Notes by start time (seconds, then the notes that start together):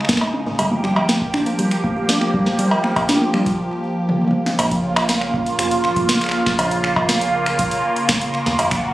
Already playing: C#3 G#3 D#4
0.01 finger snap
0.05 finger snap
0.09 A#3, finger snap, kick, snare, closed hi-hat
0.13 finger snap, snare
0.17 finger snap, snare
0.21 A#3, cowbell
0.34 C#4
0.46 G#1 A#3
0.59 G1 F3 G3 A#3 G4, closed hi-hat, cowbell
0.71 A#3
0.84 G3, finger snap
0.96 cowbell
1.09 A#3, snare, closed hi-hat
1.21 kick
1.34 D4, finger snap
1.46 A#3, closed hi-hat
1.59 G3, closed hi-hat
1.71 finger snap, closed hi-hat
1.84 A#3, kick
1.96 A#3
2.09 D4, snare, closed hi-hat
2.21 A#3, finger snap
2.34 G3, kick
2.46 A#3, snare
2.59 G3, closed hi-hat
2.71 cowbell
2.84 A#3, finger snap
2.96 kick, closed hi-hat, cowbell
3.09 D4, snare, closed hi-hat
3.21 A#3
3.34 G3, finger snap
3.46 kick, closed hi-hat
4.09 high tom
4.21 high tom
4.25 high tom
4.28 high tom
4.31 high tom
4.46 snare
4.59 A#1 C#3 A#3 F4, finger snap, closed hi-hat, cowbell
4.71 kick, closed hi-hat
4.96 finger snap, cowbell
5.09 snare, closed hi-hat
5.21 finger snap
5.34 kick
5.46 closed hi-hat
5.59 F1, finger snap, closed hi-hat
5.71 closed hi-hat
5.84 A#1, finger snap
5.96 kick, closed hi-hat
6.09 snare, closed hi-hat
6.21 finger snap, closed hi-hat
6.24 finger snap
6.26 finger snap
6.29 finger snap
6.31 finger snap
6.46 finger snap, kick, snare, closed hi-hat
6.59 A#1, closed hi-hat, cowbell
6.71 closed hi-hat
6.84 finger snap
6.96 kick, cowbell
7.09 finger snap, snare, closed hi-hat
7.21 closed hi-hat
7.46 finger snap, closed hi-hat
7.59 kick, closed hi-hat
7.71 closed hi-hat
7.96 closed hi-hat
8.09 finger snap, kick, snare, closed hi-hat
8.21 closed hi-hat
8.34 finger snap
8.46 D#2, snare, closed hi-hat
8.59 F#1 F#4, closed hi-hat, cowbell
8.71 finger snap, kick, closed hi-hat